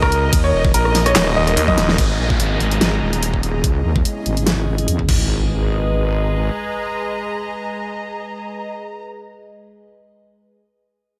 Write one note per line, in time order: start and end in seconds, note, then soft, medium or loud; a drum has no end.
0.00 0.31 C#2 loud
0.00 2.65 D#4 medium
0.00 2.65 A#4 medium
0.00 0.36 A#4 medium
0.00 5.09 D#5 medium
0.00 kick medium
0.00 cross-stick medium
0.12 closed hi-hat medium
0.33 0.52 D#2 loud
0.33 kick loud
0.33 closed hi-hat medium
0.33 ride medium
0.44 0.69 C#5 medium
0.53 0.73 E1 loud
0.65 kick loud
0.74 1.14 A#1 loud
0.74 1.00 A#4 medium
0.74 closed hi-hat medium
0.74 ride soft
0.85 cross-stick medium
0.95 snare medium
0.95 open hi-hat loud
1.06 1.31 C#5 loud
1.06 cross-stick medium
1.06 closed hi-hat medium
1.16 1.35 D#1 loud
1.16 snare loud
1.16 clap medium
1.16 closed hi-hat medium
1.16 ride medium
1.36 1.55 D#1 loud
1.36 1.63 D#5 medium
1.47 cross-stick medium
1.47 closed hi-hat medium
1.57 1.76 D#2 loud
1.57 closed hi-hat medium
1.57 ride soft
1.68 1.94 D#5 medium
1.68 kick medium
1.68 high tom medium
1.78 1.97 D#1 loud
1.78 snare medium
1.78 closed hi-hat medium
1.89 snare medium
1.98 2.18 G#1 medium
1.98 3.62 G#3 medium
1.98 3.62 B3 medium
1.98 3.62 G#4 medium
1.98 5.08 G#4 medium
1.98 3.62 D#5 medium
1.98 kick loud
1.98 closed hi-hat medium
1.98 downlifter medium
2.19 2.38 A#1 medium
2.30 kick loud
2.40 2.59 G#1 medium
2.40 closed hi-hat medium
2.60 2.80 G#1 medium
2.60 closed hi-hat medium
2.71 4.30 A#5 medium
2.71 closed hi-hat medium
2.81 3.00 G#1 medium
2.81 snare loud
2.81 closed hi-hat medium
3.02 3.62 D#1 medium
3.13 closed hi-hat soft
3.23 closed hi-hat medium
3.34 kick medium
3.43 closed hi-hat soft
3.64 3.83 C#2 medium
3.64 5.07 C#4 medium
3.64 5.09 C#4 medium
3.64 5.07 E4 medium
3.64 5.07 G#4 medium
3.64 5.07 D#5 medium
3.64 kick loud
3.64 closed hi-hat medium
3.85 4.04 D#2 medium
3.96 kick loud
4.05 closed hi-hat medium
4.26 4.86 G#1 medium
4.26 closed hi-hat soft
4.37 closed hi-hat soft
4.47 snare loud
4.47 closed hi-hat medium
4.78 closed hi-hat soft
4.88 5.08 E2 medium
4.88 closed hi-hat medium
4.99 kick medium
5.09 6.50 G#1 medium
5.09 8.69 G#3 medium
5.09 8.69 G#4 medium
5.09 8.68 B4 medium
5.09 8.68 D#5 medium
5.09 kick loud
5.09 crash medium
5.09 impact medium
5.15 8.75 D#5 medium
5.42 9.02 A#5 medium